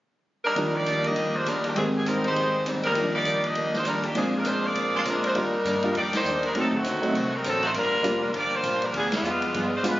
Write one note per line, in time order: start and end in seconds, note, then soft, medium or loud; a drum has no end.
0.44 0.72 G3 medium
0.44 0.72 D4 medium
0.44 0.72 D#4 medium
0.44 0.72 A#4 medium
0.55 1.76 D#2 soft
0.55 0.74 D#3 soft
0.55 1.75 D#3 soft
0.55 1.76 F3 soft
0.55 0.75 G3 soft
0.55 1.04 G3 soft
0.55 0.76 A#3 soft
0.55 1.76 D4 soft
0.55 0.76 D4 soft
0.55 kick soft
0.55 ride soft
0.75 1.04 A#3 medium
0.75 1.05 D#4 medium
0.75 1.04 G4 medium
0.75 1.04 D5 medium
0.86 1.05 D#3 soft
0.86 1.05 G3 medium
0.86 1.06 A#3 medium
0.86 1.06 D4 medium
0.86 kick soft
0.86 hi-hat pedal soft
0.86 ride soft
1.04 1.75 G3 soft
1.04 1.34 A#3 medium
1.04 1.76 A#3 soft
1.04 1.34 D4 medium
1.04 1.34 G4 medium
1.04 1.34 D#5 medium
1.04 ride soft
1.09 1.77 D#4 soft
1.16 1.35 D#3 soft
1.16 1.35 G3 soft
1.16 1.36 A#3 soft
1.16 1.37 D4 soft
1.16 kick soft
1.16 ride soft
1.35 1.46 G#3 medium
1.35 1.46 D4 medium
1.35 1.47 F4 medium
1.35 1.47 C5 medium
1.45 1.65 D#3 soft
1.45 1.65 G3 medium
1.45 1.64 G3 medium
1.45 1.65 A#3 medium
1.45 1.64 D4 medium
1.45 1.66 D4 medium
1.45 1.65 D#4 medium
1.45 1.64 A#4 medium
1.45 kick soft
1.45 hi-hat pedal soft
1.45 ride soft
1.64 1.75 D#3 medium
1.64 1.77 A#3 medium
1.64 1.77 D4 medium
1.64 1.77 G4 medium
1.64 ride soft
1.75 2.95 G#2 soft
1.75 1.95 G#2 soft
1.75 1.84 D#3 medium
1.75 2.24 D#3 soft
1.75 1.84 G3 medium
1.75 1.95 G3 soft
1.75 2.97 A#3 soft
1.75 1.84 C4 medium
1.75 1.96 C4 soft
1.75 1.96 D#4 soft
1.75 2.96 G4 soft
1.75 1.84 G#4 medium
1.75 kick soft
1.75 ride soft
1.80 2.98 C4 soft
1.96 2.06 D#3 medium
1.96 2.06 G3 medium
1.96 2.05 C4 medium
1.96 2.06 G#4 medium
2.06 2.25 G#2 medium
2.06 2.24 G3 medium
2.06 2.26 G3 medium
2.06 2.24 C4 medium
2.06 2.26 C4 medium
2.06 2.24 D#4 medium
2.06 2.26 D#4 medium
2.06 2.24 A#4 medium
2.06 kick soft
2.06 hi-hat pedal soft
2.06 ride soft
2.24 2.92 D#3 soft
2.24 2.63 G#3 medium
2.24 2.63 D#4 medium
2.24 2.63 G4 medium
2.24 2.63 C5 medium
2.24 ride soft
2.29 2.97 G#3 soft
2.35 2.55 G#2 soft
2.35 2.55 G3 soft
2.35 2.56 C4 soft
2.35 2.56 D#4 soft
2.35 kick soft
2.35 ride soft
2.66 2.85 G#2 medium
2.66 2.85 G3 medium
2.66 2.85 C4 medium
2.66 2.86 D#4 medium
2.66 kick soft
2.66 hi-hat pedal soft
2.66 ride medium
2.83 3.12 G3 medium
2.83 3.12 D4 medium
2.83 3.12 D#4 medium
2.83 3.12 A#4 medium
2.83 ride soft
2.91 4.13 D#2 soft
2.91 4.14 D#3 soft
2.91 3.14 D#3 soft
2.95 4.14 F3 soft
2.95 3.15 G3 soft
2.95 4.17 G3 soft
2.95 3.15 A#3 soft
2.95 3.16 D4 soft
2.95 kick soft
2.95 ride soft
3.02 4.15 D4 medium
3.14 3.41 A#3 medium
3.14 3.41 D#4 medium
3.14 3.42 G4 medium
3.14 3.42 D5 medium
3.24 3.44 D#3 medium
3.24 3.45 G3 medium
3.24 3.45 A#3 medium
3.24 3.45 D4 medium
3.24 kick soft
3.24 hi-hat pedal soft
3.24 ride medium
3.43 3.73 A#3 medium
3.43 3.74 D4 medium
3.43 3.73 G4 medium
3.43 3.74 D#5 medium
3.43 ride soft
3.55 3.74 D#3 soft
3.55 3.75 G3 soft
3.55 3.75 A#3 soft
3.55 3.76 D4 soft
3.55 kick soft
3.55 ride soft
3.73 3.85 G#3 medium
3.73 3.85 D4 medium
3.73 3.85 F4 medium
3.73 3.85 C5 medium
3.73 snare soft
3.85 4.04 D#3 medium
3.85 4.04 G3 medium
3.85 4.03 G3 medium
3.85 4.05 A#3 medium
3.85 4.02 D4 medium
3.85 4.05 D4 medium
3.85 4.03 D#4 medium
3.85 4.03 A#4 medium
3.85 kick soft
3.85 hi-hat pedal soft
3.85 ride medium
4.03 4.16 D#3 medium
4.03 4.16 A#3 medium
4.03 4.16 D4 medium
4.03 4.15 G4 medium
4.03 ride soft
4.14 5.34 A#2 soft
4.14 4.34 A#2 soft
4.14 5.35 F3 soft
4.14 4.35 F3 soft
4.14 4.33 F3 medium
4.14 5.35 G#3 soft
4.14 4.35 G#3 soft
4.14 4.33 A#3 medium
4.14 5.35 C4 soft
4.14 5.34 D4 soft
4.14 4.33 D4 medium
4.14 4.36 D4 soft
4.14 4.32 G#4 medium
4.14 kick soft
4.14 ride medium
4.36 4.46 G#3 medium
4.36 4.47 D4 medium
4.36 4.46 F4 medium
4.36 4.47 A#4 medium
4.45 4.64 A#2 medium
4.45 4.65 F3 medium
4.45 4.65 G#3 medium
4.45 4.64 G#3 medium
4.45 4.65 D4 medium
4.45 4.64 D4 medium
4.45 4.64 F4 medium
4.45 4.64 C5 medium
4.45 kick soft
4.45 hi-hat pedal soft
4.45 ride medium
4.65 5.06 A#3 medium
4.65 4.94 F4 medium
4.65 5.06 G#4 medium
4.65 5.06 D5 medium
4.75 4.94 A#2 soft
4.75 4.95 F3 soft
4.75 4.95 G#3 soft
4.75 4.96 D4 soft
4.75 kick soft
4.75 ride soft
4.96 5.01 G#3 medium
4.96 5.01 D4 medium
4.96 5.00 F4 medium
4.96 5.01 C5 medium
5.05 5.24 A#2 medium
5.05 5.25 F3 medium
5.05 5.25 G#3 medium
5.05 5.23 G#3 medium
5.05 5.25 D4 medium
5.05 5.23 D4 medium
5.05 5.23 F4 medium
5.05 5.23 A#4 medium
5.05 kick soft
5.05 hi-hat pedal soft
5.05 ride medium
5.24 5.35 G#3 medium
5.24 5.35 D4 medium
5.24 5.35 F4 medium
5.24 5.35 C5 medium
5.24 ride soft
5.35 5.64 D#2 medium
5.35 5.54 D#3 soft
5.35 5.51 G3 soft
5.35 5.95 G3 medium
5.35 5.55 G3 soft
5.35 5.51 A#3 soft
5.35 5.55 A#3 soft
5.35 5.51 D4 soft
5.35 5.95 D4 medium
5.35 5.55 D4 soft
5.35 5.95 D#4 medium
5.35 5.51 F4 medium
5.35 5.95 A#4 medium
5.35 kick soft
5.35 ride soft
5.65 5.94 G2 medium
5.65 5.84 D#3 medium
5.65 5.84 G3 medium
5.65 5.85 A#3 medium
5.65 5.85 D4 medium
5.65 kick soft
5.65 hi-hat pedal soft
5.65 ride medium
5.83 5.94 G3 medium
5.83 5.94 A#3 medium
5.83 5.94 D4 soft
5.83 5.94 F4 medium
5.83 ride soft
5.95 6.24 F2 medium
5.95 6.14 D#3 soft
5.95 6.14 G3 soft
5.95 6.12 A#3 medium
5.95 6.15 A#3 soft
5.95 6.15 D4 soft
5.95 6.12 D#4 medium
5.95 6.12 G4 medium
5.95 6.12 D5 medium
5.95 kick soft
5.95 ride soft
6.13 6.41 A#3 medium
6.13 6.41 D#4 medium
6.13 6.41 G4 medium
6.13 6.41 C5 medium
6.13 snare medium
6.13 ride medium
6.24 6.54 D#2 medium
6.24 6.44 D#3 medium
6.24 6.44 G3 medium
6.24 6.45 A#3 medium
6.24 6.45 D4 medium
6.24 hi-hat pedal soft
6.43 6.56 G3 medium
6.43 6.55 D4 medium
6.43 6.55 D#4 medium
6.43 6.56 A#4 medium
6.43 ride soft
6.54 6.84 D2 medium
6.54 6.73 D3 soft
6.54 6.74 F#3 soft
6.54 6.71 F#3 soft
6.54 6.71 A3 soft
6.54 6.71 C4 soft
6.54 6.74 C4 soft
6.54 6.71 D#4 medium
6.54 6.75 D#4 soft
6.54 kick soft
6.54 ride soft
6.58 6.73 F#3 medium
6.58 6.73 C4 medium
6.58 6.73 D#4 medium
6.58 6.73 A4 medium
6.73 7.34 D#3 medium
6.73 7.34 A3 medium
6.73 7.34 C4 medium
6.73 7.34 F#4 medium
6.73 kick medium
6.84 7.13 D#2 medium
6.84 7.03 D3 medium
6.84 7.04 F#3 medium
6.84 7.04 C4 medium
6.84 7.04 D#4 medium
6.84 kick soft
6.84 hi-hat pedal medium
6.84 ride soft
7.02 7.13 F#3 medium
7.02 7.13 A3 medium
7.02 7.13 C4 medium
7.02 7.13 D#4 medium
7.02 ride soft
7.13 7.43 C2 medium
7.13 7.33 D3 soft
7.13 7.34 F#3 medium
7.13 7.34 C4 soft
7.13 7.35 D#4 soft
7.13 kick soft
7.13 ride medium
7.34 7.45 G3 medium
7.34 7.45 C4 medium
7.34 7.45 D#4 medium
7.34 7.46 A#4 medium
7.44 7.73 A1 medium
7.44 7.63 D3 medium
7.44 7.64 F#3 medium
7.44 7.63 F#3 medium
7.44 7.64 C4 medium
7.44 7.63 C4 medium
7.44 7.64 D#4 medium
7.44 7.62 D#4 medium
7.44 7.63 A4 medium
7.44 kick soft
7.44 hi-hat pedal medium
7.44 ride medium
7.63 7.68 A3 medium
7.63 7.69 D#4 medium
7.63 7.68 F#4 medium
7.63 7.69 C5 medium
7.63 ride soft
7.74 8.03 G1 medium
7.74 7.93 G2 soft
7.74 7.94 F3 soft
7.74 8.31 G3 medium
7.74 7.94 A#3 soft
7.74 8.31 D4 medium
7.74 7.95 D4 soft
7.74 8.31 F4 medium
7.74 8.31 A#4 medium
7.74 kick soft
7.74 ride medium
8.03 8.33 F1 medium
8.03 8.23 G2 medium
8.03 8.23 F3 medium
8.03 8.20 G3 medium
8.03 8.20 A#3 medium
8.03 8.24 A#3 medium
8.03 8.20 D4 medium
8.03 8.24 D4 medium
8.03 8.20 F4 medium
8.03 kick soft
8.03 hi-hat pedal soft
8.03 ride medium
8.33 8.63 G1 medium
8.33 8.52 G2 soft
8.33 8.53 F3 soft
8.33 8.53 A#3 soft
8.33 8.53 A#3 medium
8.33 8.54 D4 soft
8.33 8.53 F4 medium
8.33 8.52 G4 medium
8.33 8.53 D5 medium
8.33 kick soft
8.33 ride medium
8.53 8.83 A#3 medium
8.53 8.82 F4 medium
8.53 8.83 G4 medium
8.53 8.82 C5 medium
8.62 8.93 A#1 medium
8.62 8.82 G2 medium
8.62 8.83 F3 medium
8.62 8.83 A#3 medium
8.62 8.83 D4 medium
8.62 kick soft
8.62 hi-hat pedal soft
8.62 ride medium
8.82 8.95 G3 medium
8.82 8.94 D4 medium
8.82 8.94 F4 medium
8.82 8.95 A#4 medium
8.82 ride soft
8.92 9.21 D2 medium
8.92 9.11 F3 medium
8.92 9.12 G3 soft
8.92 9.13 B3 soft
8.92 9.11 D4 medium
8.92 9.13 F4 soft
8.92 9.14 G#4 soft
8.92 kick soft
8.92 ride soft
8.96 9.12 B3 medium
8.96 9.12 G#4 medium
9.12 9.69 G#3 medium
9.12 9.69 B3 medium
9.12 9.69 D4 medium
9.12 9.69 F4 medium
9.12 snare medium
9.12 ride medium
9.22 9.52 F2 medium
9.22 9.42 G3 medium
9.22 9.43 B3 medium
9.22 9.43 F4 medium
9.22 9.44 G#4 medium
9.22 hi-hat pedal soft
9.42 ride soft
9.53 9.83 G2 medium
9.53 9.72 G3 soft
9.53 9.73 B3 soft
9.53 9.74 F4 medium
9.53 9.74 G#4 medium
9.53 kick soft
9.53 ride medium
9.74 9.85 G#3 medium
9.74 9.85 D4 medium
9.74 9.85 F4 medium
9.74 9.85 C5 medium
9.83 10.00 G#2 medium
9.83 10.00 G3 medium
9.83 9.99 G#3 soft
9.83 10.00 B3 soft
9.83 10.00 B3 medium
9.83 10.00 D4 soft
9.83 10.00 F4 medium
9.83 10.00 G#4 medium
9.83 kick soft
9.83 hi-hat pedal medium
9.83 ride medium
9.87 10.00 G#3 medium
9.87 10.00 D4 medium
9.87 10.00 F4 medium
9.87 10.00 B4 medium